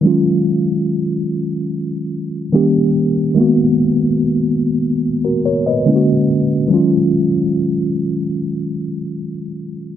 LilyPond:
<<
  \new Staff \with { instrumentName = "Tine electric piano" } { \time 4/4 \key ees \minor \tempo 4 = 72 r1 | r2 r16 <ges' bes'>16 <bes' des''>16 <ces'' ees''>8 r8. | r1 | }
  \new Staff \with { instrumentName = "Tine electric piano" } { \time 4/4 \key ees \minor <ees ges aes des' f'>2. <ees g bes des' g'>4 | <ees aes bes ces' ges'>2. <d aes bes cis' fes' fis'>4 | <ees ges aes des' f'>1 | }
>>